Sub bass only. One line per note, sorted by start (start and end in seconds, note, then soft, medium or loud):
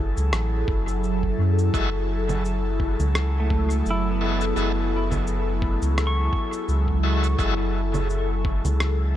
0.00 0.13 F#1 loud
0.17 0.32 C#2 medium
0.33 0.64 A1 loud
0.68 1.36 F#1 medium
1.38 1.70 F#2 loud
1.74 2.96 F#1 loud
2.99 3.83 C#2 medium
3.86 4.53 F#1 medium
4.56 5.78 F#1 loud
5.82 6.30 C#2 medium
6.68 7.36 C#2 loud
7.39 8.61 F#1 loud
8.64 9.16 C#2 medium